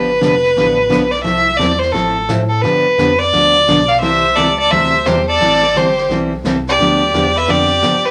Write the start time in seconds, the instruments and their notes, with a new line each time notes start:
Already playing: analog synth bass G1, fiddle B4
0.21 analog synth bass F1, steel-string acoustic guitar D3 F3 B3 D4 G4, snare, hi-hat pedal
0.44 snare
0.56 analog synth bass A1, steel-string acoustic guitar D3 F3 B3 D4 G4, brush sweep, snare
0.90 analog synth bass B1, steel-string acoustic guitar D3 F3 B3 D4 G4, snare, hi-hat pedal
1.11 fiddle D5, snare
1.23 analog synth bass C2, steel-string acoustic guitar F3 A3 C4 E4 A4, fiddle E5, brush sweep, snare
1.57 analog synth bass E2, steel-string acoustic guitar F3 A3 C4 E4 A4, fiddle D5, snare, hi-hat pedal
1.79 fiddle C5, snare
1.92 analog synth bass A1, steel-string acoustic guitar F3 A3 C4 E4 A4, fiddle A4, brush sweep, snare
2.29 analog synth bass A2, steel-string acoustic guitar F3 A3 C4 E4 A4, snare, hi-hat pedal
2.49 fiddle A4
2.62 analog synth bass G2, steel-string acoustic guitar D3 F3 B3 D4 G4, fiddle B4, brush sweep, snare
2.98 analog synth bass F2, steel-string acoustic guitar D3 F3 B3 D4 G4, snare, hi-hat pedal
3.18 fiddle D5, snare
3.32 analog synth bass D2, steel-string acoustic guitar D3 F3 B3 D4 G4, brush sweep, snare
3.67 analog synth bass B1, steel-string acoustic guitar D3 F3 B3 D4 G4, snare, hi-hat pedal
3.88 fiddle D5 F5, snare
3.99 analog synth bass C2, steel-string acoustic guitar C3 E3 G3 C4 E4 A4, fiddle C5 E5, brush sweep, snare
4.35 analog synth bass C#2, steel-string acoustic guitar C3 E3 G3 C4 E4 A4, fiddle A4 D5, snare, hi-hat pedal
4.58 fiddle A4 D5
4.71 analog synth bass D2, steel-string acoustic guitar C3 E3 G3 C4 E4 A4, fiddle C5 E5, brush sweep, snare
5.06 analog synth bass E2, steel-string acoustic guitar C3 E3 G3 C4 E4 A4, fiddle G4 C5, snare, hi-hat pedal
5.27 fiddle A4 D5
5.40 analog synth bass A1, steel-string acoustic guitar E3 G3 C4 E4 A4, brush sweep, snare
5.62 snare
5.74 analog synth bass G1, steel-string acoustic guitar E3 G3 C4 E4 A4, fiddle G4 C5, snare, hi-hat pedal
5.98 snare
6.09 analog synth bass B1, steel-string acoustic guitar E3 G3 C4 E4 A4, brush sweep, snare
6.44 analog synth bass C2, steel-string acoustic guitar E3 G3 C4 E4 A4, snare, hi-hat pedal
6.67 fiddle G4 D5, snare
6.79 analog synth bass D2, steel-string acoustic guitar D3 F3 B3 D4 G4, brush sweep, snare
7.13 analog synth bass E2, steel-string acoustic guitar D3 F3 B3 D4 G4, snare, hi-hat pedal
7.36 fiddle B4 E5, snare
7.48 analog synth bass F2, steel-string acoustic guitar D3 F3 B3 D4 G4, fiddle G4 D5, brush sweep, snare
7.82 analog synth bass G2, steel-string acoustic guitar D3 F3 B3 D4 G4, snare, hi-hat pedal
8.04 fiddle G4 B4, snare